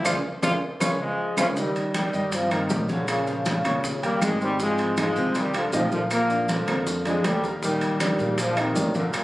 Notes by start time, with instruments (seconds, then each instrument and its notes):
0.04 upright bass D2, trombone F4, grand piano G#4 C5 D5, low bongo, high conga, high timbale, claves, maracas
0.42 upright bass D2, trombone F4, grand piano G#4 C5 D5, low bongo, high conga, high timbale, claves, maracas
0.80 upright bass C#2, trombone F4, grand piano G#4 B4 C#5, low bongo, high conga, high timbale, claves, maracas
1.01 trombone section F3 G#3
1.37 upright bass C#2, trombone section C#3 F3, trombone F4, grand piano G#4 B4 C#5, low bongo, high conga, high timbale, claves, maracas
1.57 grand piano D#3 D#4 D#5, trombone section D#3 G3, high bongo, high conga, maracas
1.76 high conga, high timbale, maracas
1.94 trombone section D#3 G3, grand piano G3 G4 G5, high bongo, high conga, high timbale, low timbale, claves, maracas
2.13 upright bass G2, grand piano D#3 D#4 D#5, high bongo, high conga, maracas
2.32 trombone section C3 F3, high bongo, high conga, high timbale, maracas
2.51 trombone section C3 D#3, grand piano A#3 A#4 A#5, high bongo, high conga, high timbale, claves, maracas
2.70 upright bass A#1, grand piano G3 G4 G5, high bongo, low bongo, high conga, low timbale, maracas
2.89 trombone section A#2 D3, grand piano C#3 C#4 C#5, high bongo, high conga, maracas
3.08 trombone section A#2 C#3, high bongo, high conga, high timbale, claves, maracas
3.27 grand piano F3 F4 F5, high conga, maracas
3.46 trombone section A#2 C#3, high bongo, high conga, high timbale, low timbale, maracas
3.65 upright bass D#2, grand piano C#4 C#5 C#6, high bongo, high conga, low conga, high timbale, claves, maracas
3.84 high bongo, high conga, low conga, maracas
4.03 grand piano G3 G4 G5, trombone section G3 A#3, high bongo, high conga, high timbale, maracas
4.21 upright bass G#1, trombone section D#3 G#3, high bongo, low bongo, high conga, high timbale, low timbale, claves, maracas
4.41 trombone section D#3 G3, grand piano C4 C5 C6, high bongo, maracas
4.60 grand piano C3 C4 C5, trombone section F3 G#3, high bongo, high conga, maracas
4.78 high conga, high timbale, maracas
4.97 grand piano D#3 D#4 D#5, trombone section F3 G#3, high bongo, high conga, high timbale, low timbale, claves, maracas
5.16 upright bass C2, grand piano C3 C4 C5, high bongo, high conga, maracas
5.35 trombone section D#3 G3, high bongo, high conga, high timbale, maracas
5.54 trombone section D3 F3, grand piano F3 F4 F5, high bongo, high conga, high timbale, claves, maracas
5.73 upright bass A#1, trombone section C3 F3, grand piano D#3 D#4 D#5, high bongo, low bongo, high conga, low timbale, maracas
5.92 grand piano A#2 A#3 A#4, trombone section D3 F3, high bongo, high conga, maracas
6.11 trombone section F3 A#3, high bongo, high conga, high timbale, claves, maracas
6.30 grand piano D3 D4 D5, high conga, maracas
6.49 trombone section D3 F3, high bongo, high conga, high timbale, low timbale, maracas
6.67 upright bass F2, grand piano A#3 A#4 A#5, high bongo, high conga, low conga, high timbale, claves, maracas
6.87 high bongo, high conga, maracas
7.05 grand piano D3 D4 D5, trombone section F3 G#3, low bongo, high conga, high timbale, maracas
7.24 upright bass D#2, trombone section D3 G3, low bongo, high conga, high timbale, low timbale, claves, maracas
7.43 grand piano A#3 A#4 A#5, low bongo, maracas
7.62 grand piano A#2 A#3 A#4, trombone section D#3 G3, high bongo, high conga, maracas
7.81 high conga, high timbale, maracas
8.00 grand piano D3 D4 D5, trombone section D#3 G3, high bongo, high conga, high timbale, low timbale, claves, maracas
8.19 upright bass A#1, grand piano A#2 A#3 A#4, high bongo, high conga, maracas
8.38 trombone section D3 F3, high bongo, high conga, high timbale, maracas
8.57 trombone section C3 D#3, grand piano D#3 D#4 D#5, high bongo, high conga, high timbale, claves, maracas
8.75 upright bass G1, grand piano D3 D4 D5, high bongo, low bongo, high conga, low timbale, maracas
8.95 grand piano A#2 A#3 A#4, trombone section A#2 D3, high bongo, high conga, maracas
9.13 trombone section G2 A#2, high bongo, high conga, high timbale, claves, maracas